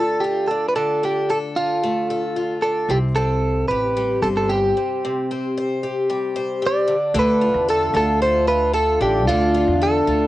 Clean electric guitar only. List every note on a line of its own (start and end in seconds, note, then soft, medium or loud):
0.00 0.23 A4 medium
0.20 0.49 G4 medium
0.48 0.68 A4 medium
0.69 0.76 B4 medium
0.76 1.03 A4 medium
1.05 1.31 G4 medium
1.30 1.37 A4 medium
1.56 2.59 F4 medium
2.62 2.90 A4 medium
2.91 2.98 G4 medium
3.16 3.68 A4 medium
3.68 4.22 B4 medium
4.22 4.27 A4 medium
4.37 4.50 A4 medium
4.49 6.58 G4 medium
6.67 7.19 D5 loud
7.19 7.70 B4 loud
7.70 7.96 A4 medium
7.97 8.22 A4 loud
8.22 8.48 C5 medium
8.48 8.74 B4 loud
8.74 8.99 A4 medium
9.02 9.26 G4 medium
9.27 9.82 F4 loud
9.83 10.27 A4 medium